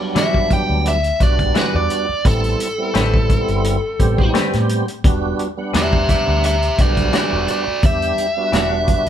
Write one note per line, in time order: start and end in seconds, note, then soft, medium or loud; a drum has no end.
0.00 0.98 F#3 medium
0.00 0.98 G3 medium
0.00 0.98 B3 medium
0.00 0.98 D4 medium
0.15 0.37 E3 medium
0.15 0.58 E3 medium
0.15 0.38 G3 medium
0.15 0.38 D4 medium
0.15 0.39 F#4 medium
0.15 0.51 E5 medium
0.15 snare loud
0.15 closed hi-hat medium
0.34 kick medium
0.51 0.86 G5 medium
0.51 kick medium
0.51 closed hi-hat medium
0.69 1.10 D2 medium
0.86 1.21 E5 medium
0.86 closed hi-hat medium
1.04 closed hi-hat soft
1.20 1.48 B1 loud
1.20 2.06 G3 medium
1.20 2.06 B3 medium
1.20 2.07 D4 medium
1.20 2.07 F#4 medium
1.20 1.56 D5 medium
1.20 kick medium
1.20 closed hi-hat medium
1.39 kick medium
1.39 closed hi-hat soft
1.55 1.77 E3 medium
1.55 1.77 G3 medium
1.55 1.78 D4 medium
1.55 1.78 F#4 medium
1.55 1.74 B4 medium
1.55 muted fingered electric bass stroke soft
1.55 snare loud
1.55 closed hi-hat medium
1.74 1.87 E2 medium
1.74 2.25 D5 medium
1.90 closed hi-hat medium
2.09 muted fingered electric bass stroke soft
2.25 2.53 A1 medium
2.25 2.68 G3 medium
2.25 2.68 B3 medium
2.25 2.68 C4 medium
2.25 2.68 E4 medium
2.25 4.32 A4 medium
2.25 kick loud
2.25 closed hi-hat medium
2.44 closed hi-hat soft
2.60 closed hi-hat medium
2.78 3.77 G3 medium
2.78 3.77 B3 medium
2.78 3.77 C4 medium
2.78 3.77 E4 medium
2.94 3.38 A1 medium
2.94 3.16 A3 medium
2.94 3.17 C4 medium
2.94 3.17 G4 medium
2.94 3.17 B4 medium
2.94 snare loud
2.94 closed hi-hat medium
3.14 kick medium
3.30 kick medium
3.30 closed hi-hat medium
3.48 3.77 G1 medium
3.48 closed hi-hat soft
3.64 closed hi-hat medium
3.99 4.28 A1 loud
3.99 4.85 G3 medium
3.99 4.85 B3 medium
3.99 4.86 C4 medium
3.99 4.86 G4 medium
3.99 kick medium
3.99 closed hi-hat medium
4.18 kick medium
4.34 4.56 A3 medium
4.34 4.57 C4 medium
4.34 4.57 G4 medium
4.34 4.57 B4 medium
4.34 snare loud
4.34 closed hi-hat medium
4.53 4.82 A2 medium
4.53 snare soft
4.53 closed hi-hat soft
4.69 closed hi-hat medium
4.88 closed hi-hat soft
5.04 5.32 E1 loud
5.04 5.47 G3 medium
5.04 5.47 B3 medium
5.04 5.47 D4 medium
5.04 5.48 F#4 medium
5.04 kick loud
5.04 closed hi-hat medium
5.39 closed hi-hat medium
5.57 6.56 G3 medium
5.57 6.57 B3 medium
5.57 6.57 D4 medium
5.57 6.57 F#5 medium
5.74 6.17 E2 loud
5.74 5.96 E3 medium
5.74 5.96 G3 medium
5.74 5.97 D4 medium
5.74 5.97 F#4 medium
5.74 6.09 G4 medium
5.74 6.10 E5 medium
5.74 snare loud
5.74 closed hi-hat medium
5.93 kick medium
6.09 6.42 G4 medium
6.09 6.44 E5 medium
6.09 kick medium
6.09 closed hi-hat medium
6.28 6.69 D2 medium
6.44 6.77 G4 medium
6.44 6.79 E5 medium
6.44 closed hi-hat medium
6.62 closed hi-hat soft
6.78 7.07 B1 loud
6.78 7.65 G3 medium
6.78 7.65 B3 medium
6.78 7.65 D4 medium
6.78 7.65 F#4 medium
6.78 7.12 F#4 medium
6.78 7.14 D5 medium
6.78 kick medium
6.78 closed hi-hat medium
6.97 kick medium
6.97 closed hi-hat soft
7.13 7.35 E3 medium
7.13 7.36 G3 medium
7.13 7.36 D4 medium
7.13 7.36 F#4 medium
7.13 7.47 F#4 medium
7.13 7.49 D5 medium
7.13 muted fingered electric bass stroke soft
7.13 snare loud
7.13 closed hi-hat medium
7.33 7.45 E1 medium
7.48 7.82 F#4 medium
7.48 7.84 D5 medium
7.48 closed hi-hat medium
7.67 muted fingered electric bass stroke soft
7.83 8.11 E2 medium
7.83 8.26 G3 medium
7.83 8.27 B3 medium
7.83 8.27 D4 medium
7.83 8.27 G4 medium
7.83 9.09 E5 loud
7.83 kick loud
7.83 closed hi-hat medium
8.02 closed hi-hat soft
8.18 closed hi-hat medium
8.37 9.09 G3 medium
8.37 9.09 B3 medium
8.37 9.09 D4 medium
8.37 9.09 F#4 medium
8.52 8.96 E1 medium
8.52 8.75 E3 medium
8.52 8.75 G3 medium
8.52 8.76 D4 medium
8.52 8.76 F#4 medium
8.52 snare loud
8.52 closed hi-hat medium
8.88 kick medium
8.88 closed hi-hat medium